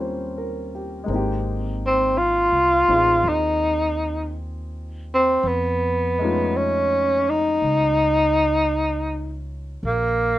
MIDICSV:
0, 0, Header, 1, 4, 480
1, 0, Start_track
1, 0, Key_signature, -4, "minor"
1, 0, Tempo, 1081081
1, 483, Time_signature, 4, 2, 24, 8
1, 1443, Tempo, 1096892
1, 4566, End_track
2, 0, Start_track
2, 0, Title_t, "Grand piano"
2, 0, Program_c, 0, 0
2, 0, Control_c, 0, 64, 127
2, 0, Note_on_c, 0, 55, 44
2, 0, Note_on_c, 0, 58, 39
2, 0, Note_on_c, 0, 60, 40
2, 0, Note_on_c, 0, 61, 40
2, 0, Note_on_c, 0, 65, 47
2, 5, Note_on_c, 0, 72, 42
2, 168, Note_on_c, 0, 70, 42
2, 316, Note_off_c, 0, 72, 0
2, 333, Note_on_c, 0, 67, 40
2, 417, Note_off_c, 0, 70, 0
2, 461, Note_on_c, 0, 56, 52
2, 465, Note_off_c, 0, 58, 0
2, 471, Note_on_c, 0, 58, 45
2, 480, Note_off_c, 0, 60, 0
2, 482, Note_off_c, 0, 55, 0
2, 484, Note_off_c, 0, 61, 0
2, 485, Note_off_c, 0, 65, 0
2, 487, Note_on_c, 0, 60, 45
2, 489, Control_c, 0, 64, 0
2, 497, Note_on_c, 0, 63, 49
2, 506, Note_off_c, 0, 67, 0
2, 513, Note_on_c, 0, 67, 59
2, 575, Control_c, 0, 64, 127
2, 1275, Note_off_c, 0, 60, 0
2, 1279, Note_off_c, 0, 63, 0
2, 1282, Note_on_c, 0, 60, 36
2, 1286, Note_on_c, 0, 63, 33
2, 1291, Note_on_c, 0, 65, 36
2, 1296, Note_on_c, 0, 68, 44
2, 2389, Note_off_c, 0, 56, 0
2, 2394, Note_off_c, 0, 58, 0
2, 2399, Note_off_c, 0, 60, 0
2, 2401, Note_off_c, 0, 63, 0
2, 2404, Note_off_c, 0, 65, 0
2, 2406, Control_c, 0, 64, 0
2, 2407, Note_off_c, 0, 68, 0
2, 2414, Note_off_c, 0, 67, 0
2, 2471, Control_c, 0, 64, 127
2, 2728, Note_on_c, 0, 56, 45
2, 2735, Note_on_c, 0, 57, 46
2, 2744, Note_on_c, 0, 61, 46
2, 2747, Note_on_c, 0, 63, 47
2, 2752, Note_on_c, 0, 65, 55
2, 4324, Note_off_c, 0, 56, 0
2, 4327, Note_off_c, 0, 57, 0
2, 4328, Control_c, 0, 64, 0
2, 4332, Note_off_c, 0, 61, 0
2, 4333, Note_off_c, 0, 63, 0
2, 4336, Note_off_c, 0, 65, 0
2, 4411, Control_c, 0, 64, 127
2, 4566, End_track
3, 0, Start_track
3, 0, Title_t, "Tenor saxophone"
3, 0, Program_c, 1, 66
3, 826, Note_on_c, 1, 60, 74
3, 967, Note_on_c, 1, 65, 86
3, 974, Note_off_c, 1, 60, 0
3, 1460, Note_on_c, 1, 63, 72
3, 1466, Note_off_c, 1, 65, 0
3, 1929, Note_off_c, 1, 63, 0
3, 2273, Note_on_c, 1, 60, 74
3, 2414, Note_on_c, 1, 59, 71
3, 2421, Note_off_c, 1, 60, 0
3, 2895, Note_on_c, 1, 61, 73
3, 2902, Note_off_c, 1, 59, 0
3, 3213, Note_on_c, 1, 63, 90
3, 3219, Note_off_c, 1, 61, 0
3, 4175, Note_off_c, 1, 63, 0
3, 4338, Note_on_c, 1, 58, 74
3, 4566, Note_off_c, 1, 58, 0
3, 4566, End_track
4, 0, Start_track
4, 0, Title_t, "Upright bass"
4, 0, Program_c, 2, 32
4, 0, Note_on_c, 2, 39, 75
4, 463, Note_off_c, 2, 39, 0
4, 480, Note_on_c, 2, 32, 71
4, 1102, Note_off_c, 2, 32, 0
4, 1120, Note_on_c, 2, 36, 55
4, 1270, Note_off_c, 2, 36, 0
4, 1279, Note_on_c, 2, 33, 60
4, 1430, Note_off_c, 2, 33, 0
4, 1438, Note_on_c, 2, 39, 76
4, 2380, Note_off_c, 2, 39, 0
4, 2397, Note_on_c, 2, 41, 77
4, 3338, Note_off_c, 2, 41, 0
4, 3355, Note_on_c, 2, 37, 68
4, 4305, Note_off_c, 2, 37, 0
4, 4322, Note_on_c, 2, 34, 75
4, 4566, Note_off_c, 2, 34, 0
4, 4566, End_track
0, 0, End_of_file